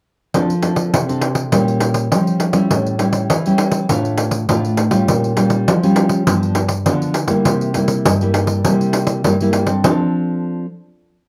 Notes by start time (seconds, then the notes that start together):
0.34 F3 C4 D4 A4, pandeiro
0.50 pandeiro
0.62 C4 D4 A4, pandeiro
0.76 pandeiro
0.93 C3, pandeiro
1.09 C4 D4 A4, pandeiro
1.21 pandeiro
1.35 pandeiro
1.52 A#2 G3 C#4 F4, pandeiro
1.68 pandeiro
1.81 pandeiro
1.94 pandeiro
2.11 F3 G3 C#4 F4, pandeiro
2.27 pandeiro
2.40 pandeiro
2.53 G3 C#4 E4, pandeiro
2.71 A2, pandeiro
2.87 pandeiro
2.99 G3 C#4 E4, pandeiro
3.13 pandeiro
3.30 E3, pandeiro
3.46 G3 C#4 E4, pandeiro
3.58 pandeiro
3.72 pandeiro
3.89 A2 A3 D4 F4, pandeiro
4.05 pandeiro
4.18 pandeiro
4.31 pandeiro
4.49 A2 A3 D4 F4, pandeiro
4.65 pandeiro
4.77 pandeiro
4.91 G3 C#4 F4, pandeiro
5.08 A#2, pandeiro
5.24 pandeiro
5.37 G3 C#4 F4, pandeiro
5.50 pandeiro
5.68 F3, pandeiro
5.83 G3 C#4 F4, pandeiro
5.96 pandeiro
6.09 pandeiro
6.27 G2 F3 B3 D4, pandeiro
6.43 pandeiro
6.55 pandeiro
6.69 pandeiro
6.86 D3 F3 B3 D4, pandeiro
7.02 pandeiro
7.14 pandeiro
7.28 G3 A#3 E4, pandeiro
7.45 C3, pandeiro
7.61 pandeiro
7.74 G3 A#3 E4, pandeiro
7.88 pandeiro
8.05 G2, pandeiro
8.21 G3 A#3 E4, pandeiro
8.34 pandeiro
8.47 pandeiro
8.65 C3 G3 A#3 E4, pandeiro
8.81 pandeiro
8.93 pandeiro
9.07 pandeiro
9.24 G2 G3 A#3 E4, pandeiro
9.40 G3 A#3 E4, pandeiro
9.53 pandeiro
9.67 C4 D4 A4, pandeiro
9.84 F3 C4 D4 A4, pandeiro